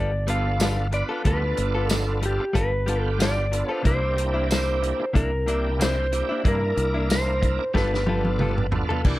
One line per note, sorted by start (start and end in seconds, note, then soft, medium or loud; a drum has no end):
0.00 1.02 G1 loud
0.00 0.13 G3 medium
0.00 0.13 B3 medium
0.00 0.12 F4 medium
0.00 0.11 A4 medium
0.00 0.29 D5 medium
0.12 muted clean electric guitar stroke soft
0.27 0.48 G3 medium
0.27 0.88 B3 medium
0.27 0.49 B3 medium
0.27 0.87 D4 medium
0.27 0.87 F4 medium
0.27 0.49 F4 medium
0.27 0.87 A4 medium
0.27 0.50 A4 medium
0.27 0.90 F5 loud
0.27 closed hi-hat medium
0.60 0.78 G3 medium
0.60 0.78 B3 medium
0.60 0.78 F4 medium
0.60 0.76 A4 medium
0.60 snare loud
0.60 closed hi-hat medium
0.60 tambourine loud
0.78 muted clean electric guitar stroke soft
0.92 1.23 B3 medium
0.92 1.22 D4 medium
0.92 1.22 F4 medium
0.92 1.23 B4 medium
0.92 1.03 D5 medium
0.92 muted clean electric guitar stroke soft
0.92 closed hi-hat medium
1.09 1.24 B3 soft
1.09 1.25 F4 soft
1.09 1.24 A4 medium
1.24 1.52 D2 medium
1.24 1.43 G3 medium
1.24 1.43 B3 medium
1.24 2.45 B3 medium
1.24 2.45 D4 medium
1.24 2.45 F4 medium
1.24 1.43 F4 medium
1.24 2.45 A4 medium
1.24 1.42 A4 medium
1.24 1.92 B4 medium
1.24 kick loud
1.24 closed hi-hat medium
1.43 muted clean electric guitar stroke soft
1.56 2.38 G1 medium
1.56 muted clean electric guitar stroke soft
1.56 closed hi-hat medium
1.75 1.89 B3 soft
1.75 1.89 F4 medium
1.75 1.89 A4 medium
1.89 2.20 A4 medium
1.89 muted clean electric guitar stroke soft
1.89 snare medium
1.89 closed hi-hat medium
1.89 tambourine loud
2.22 2.57 G4 medium
2.22 muted clean electric guitar stroke soft
2.22 closed hi-hat medium
2.40 muted clean electric guitar stroke soft
2.53 3.62 G1 medium
2.53 2.72 G3 medium
2.53 2.73 B3 medium
2.53 2.73 F4 medium
2.53 2.71 A4 medium
2.53 kick medium
2.53 closed hi-hat medium
2.58 3.03 B4 medium
2.72 muted clean electric guitar stroke soft
2.86 3.08 G3 medium
2.86 3.47 B3 medium
2.86 3.09 B3 medium
2.86 3.47 D4 medium
2.86 3.47 F4 medium
2.86 3.09 F4 medium
2.86 3.47 G4 medium
2.86 3.09 A4 medium
2.86 closed hi-hat medium
3.03 3.17 A4 medium
3.18 3.37 G3 medium
3.18 3.37 B3 medium
3.18 3.36 F4 medium
3.18 3.36 A4 medium
3.18 3.72 D5 medium
3.18 snare loud
3.18 closed hi-hat medium
3.18 tambourine loud
3.37 muted clean electric guitar stroke soft
3.51 3.83 B3 medium
3.51 3.83 D4 medium
3.51 3.83 F4 medium
3.51 3.83 A4 medium
3.51 muted clean electric guitar stroke soft
3.51 closed hi-hat medium
3.69 3.84 B3 soft
3.69 3.85 F4 soft
3.69 3.84 A4 medium
3.69 3.87 C5 medium
3.83 4.92 C2 medium
3.83 4.02 C3 medium
3.83 4.02 A#3 medium
3.83 5.05 A#3 medium
3.83 4.01 D4 medium
3.83 5.05 D4 medium
3.83 4.00 E4 medium
3.83 5.05 E4 medium
3.83 5.05 G4 medium
3.83 kick loud
3.83 closed hi-hat medium
3.87 4.47 C5 medium
4.02 muted clean electric guitar stroke soft
4.16 muted clean electric guitar stroke soft
4.16 closed hi-hat medium
4.34 4.49 A#3 soft
4.34 4.49 D4 soft
4.34 4.49 E4 medium
4.50 5.16 C5 medium
4.50 muted clean electric guitar stroke soft
4.50 snare loud
4.50 closed hi-hat medium
4.50 tambourine medium
4.82 muted clean electric guitar stroke soft
4.82 closed hi-hat medium
5.00 muted clean electric guitar stroke soft
5.13 6.21 C2 medium
5.13 5.32 C3 medium
5.13 5.33 A#3 medium
5.13 5.32 D4 medium
5.13 5.31 E4 medium
5.13 5.82 A#4 medium
5.13 kick medium
5.13 closed hi-hat medium
5.33 muted clean electric guitar stroke soft
5.46 5.68 C3 medium
5.46 6.07 A#3 medium
5.46 5.68 A#3 medium
5.46 6.07 D4 medium
5.46 5.69 D4 medium
5.46 6.07 E4 medium
5.46 5.69 E4 medium
5.46 6.07 G4 medium
5.46 closed hi-hat medium
5.79 5.98 C3 medium
5.79 5.98 A#3 medium
5.79 5.97 D4 medium
5.79 5.96 E4 medium
5.79 6.42 C5 medium
5.79 snare loud
5.79 closed hi-hat medium
5.79 tambourine loud
5.97 muted clean electric guitar stroke soft
6.12 6.42 A#3 medium
6.12 6.42 D4 medium
6.12 6.42 E4 medium
6.12 6.42 G4 medium
6.12 muted clean electric guitar stroke soft
6.12 closed hi-hat medium
6.29 6.43 A#3 soft
6.29 6.44 D4 soft
6.29 6.44 E4 medium
6.44 6.72 G2 medium
6.44 6.63 C3 medium
6.44 7.65 A#3 medium
6.44 6.63 A#3 medium
6.44 7.64 D4 medium
6.44 6.62 D4 medium
6.44 7.64 E4 medium
6.44 6.61 E4 medium
6.44 7.64 A#4 medium
6.44 kick loud
6.44 closed hi-hat medium
6.48 7.07 A#4 medium
6.63 muted clean electric guitar stroke soft
6.76 7.57 C2 medium
6.76 muted clean electric guitar stroke soft
6.76 closed hi-hat medium
6.94 7.08 A#3 soft
6.94 7.09 D4 soft
6.94 7.09 E4 medium
7.09 7.72 C5 medium
7.09 muted clean electric guitar stroke soft
7.09 snare loud
7.09 closed hi-hat medium
7.09 tambourine loud
7.41 muted clean electric guitar stroke soft
7.41 kick medium
7.41 closed hi-hat medium
7.59 muted clean electric guitar stroke soft
7.73 8.81 G1 medium
7.73 7.93 G3 medium
7.73 8.04 B3 medium
7.73 7.93 B3 medium
7.73 8.04 D4 medium
7.73 8.04 F4 medium
7.73 7.93 F4 medium
7.73 8.04 A4 medium
7.73 7.92 A4 medium
7.73 8.69 B4 medium
7.73 kick medium
7.73 snare medium
7.93 muted clean electric guitar stroke soft
7.93 snare medium
8.06 8.28 G3 medium
8.06 8.67 B3 medium
8.06 8.29 B3 medium
8.06 8.67 D4 medium
8.06 8.67 F4 medium
8.06 8.29 F4 medium
8.06 8.67 A4 medium
8.06 8.30 A4 medium
8.06 high tom medium
8.25 high tom medium
8.39 8.57 G3 medium
8.39 8.57 B3 medium
8.39 8.56 F4 medium
8.39 8.56 A4 medium
8.39 mid tom medium
8.57 muted clean electric guitar stroke soft
8.57 mid tom medium
8.71 9.02 B3 medium
8.71 9.02 D4 medium
8.71 9.02 F4 medium
8.71 9.02 A4 medium
8.71 muted clean electric guitar stroke soft
8.71 floor tom medium
8.89 9.05 B3 soft
8.89 9.05 F4 medium
8.89 9.04 A4 medium
8.89 floor tom medium
9.04 9.19 C2 medium
9.04 9.19 C3 medium
9.04 9.19 E3 medium
9.04 9.19 A#3 medium
9.04 9.19 D4 medium
9.04 9.19 E4 medium
9.04 9.19 G4 medium
9.04 kick loud
9.04 crash medium